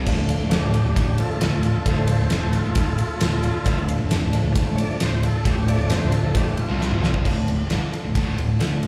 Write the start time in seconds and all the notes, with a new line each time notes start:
0.05 D1 D2 A2 D3 F3 A3 D4 F4 A4 D5 F5, kick, crash, shaker
0.10 A3
0.17 D1 D2 A2, shaker
0.28 A4 D5 F5, ride, shaker
0.39 D1 D2 A2
0.49 F1 F2 C3 A3 F#4, snare, ride, shaker
0.53 D4 F4 G4 A4
0.62 D1 D2 A2
0.74 D4 F4 G4 A4, ride, shaker
0.84 D1 D2 A2, shaker
0.96 G#1 G#2 D#3 A3 D4 F4 G4 A4, kick, ride, shaker
1.07 D1 D2 A2
1.17 D3 F3 A3 F4 A4, muted distorted electric guitar stroke, muted overdriven electric guitar stroke, ride, shaker
1.31 shaker
1.41 D1 D2 A2 A3 D4 F4 A4, snare, ride, shaker
1.53 D1 D2 A2, shaker
1.63 D4 F4 A4 D5 F5, ride, shaker
1.75 muted fingered electric bass stroke, muted overdriven electric guitar stroke, muted distorted electric guitar stroke
1.85 D1 D2 D3 F3 A3 D4 F4 A4 D5 F5, kick, ride, shaker
1.89 A2 A4 C5
1.97 D1 D2 A2
2.07 A4 C5 D5 F5, ride, shaker
2.20 D1 D2 A2
2.30 F1 F2 C3 A3 D4 F4 A4 C5, snare, ride, shaker
2.42 D1 D2 A2
2.53 D4 F4 A4, snare, ride, shaker
2.64 D1 D2 A2, shaker
2.74 G#1 G#2 D#3 A3 D4 F4 A4, kick, ride, shaker
2.87 D1 D2 A2
2.98 muted overdriven electric guitar stroke, muted distorted electric guitar stroke, ride, shaker
3.09 shaker
3.19 D1 D2 A2 A3 D4 F4 A4, snare, ride, shaker
3.31 D1 D2 A2, shaker
3.42 D4 F4 A4 D5 F5, ride, shaker
3.54 muted distorted electric guitar stroke, muted overdriven electric guitar stroke
3.64 D1 D2 A2 D3 A3 D4 F4 A4 D5 F5, kick, ride, shaker
3.77 D1 D2 A2, shaker
3.87 A4 D5 F5, ride, shaker
4.00 D1 D2 A2
4.09 F1 F2 C3 A3 D4 F4 A4, snare, ride, shaker
4.22 D1 D2 A2
4.32 D3 F3 A3 D4 F4 A4, snare, ride, shaker
4.44 D1 D2 A2
4.55 G#1 G#2 D#3 A3 D4 F4 A4, kick, ride, shaker
4.67 D1 D2 A2
4.75 C#5, muted distorted electric guitar stroke, muted fingered electric bass stroke, ride, shaker
4.80 D5, muted overdriven electric guitar stroke
4.90 shaker
5.00 D1 D2 A2 A3 D4 F4 A4 C5, snare, ride, shaker
5.12 D1 D2 A2, shaker
5.22 D4 F4 A4 D5 F5, ride, shaker
5.34 muted fingered electric bass stroke, muted overdriven electric guitar stroke, muted distorted electric guitar stroke
5.45 D1 D2 A2 D3 A3 D4 F4 A4 D5 F5, kick, ride, shaker
5.49 G4
5.56 D1 D2 A2, shaker
5.66 D3 F3 A3 A4 D5 F5, ride, shaker
5.78 D1 D2 A2, shaker
5.89 F1 F2 C3 A3 D4 F4 A4 C5, snare, ride, shaker
6.01 D1 D2 A2, shaker
6.12 D4 F4 A4, ride, shaker
6.22 D1 D2 A2
6.33 G#1 G#2 D3 D#3 F3 A3 D4 F4 G4 A4, kick, ride, shaker
6.46 D1 D2 A2, shaker
6.56 F4, muted distorted electric guitar stroke, muted fingered electric bass stroke, muted overdriven electric guitar stroke, ride
6.68 C2 C3 G3 C4
6.79 A3 D4 F4 A4, snare, shaker
6.91 D1 D2 A2, mid tom, shaker
7.01 C2 C3 G3 C4 D4 F4 A4 D5 F5, snare, shaker
7.14 kick
7.24 D1 D2 A2 D3 A3 D4 F4 A4 D5 F5, kick, crash
7.36 D1 D2 A2
7.47 D1 D2 A2 D4 F4 A4, ride
7.70 G1 G2 D3 A3 D4 F4 A4, snare, ride
7.81 muted distorted electric guitar stroke, muted overdriven electric guitar stroke
7.91 D4 F4 A4 D5 F5, ride
8.04 D1 D2 A2
8.15 D1 D2 A2 D3 A3 D4 F4 A4, kick, ride
8.38 D1 D2 A2 D4 F4 A4, ride
8.59 D2 D3 A3 D4 F4 A4, snare, ride
8.70 D1 D2 A2 A4 D5 F5
8.83 ride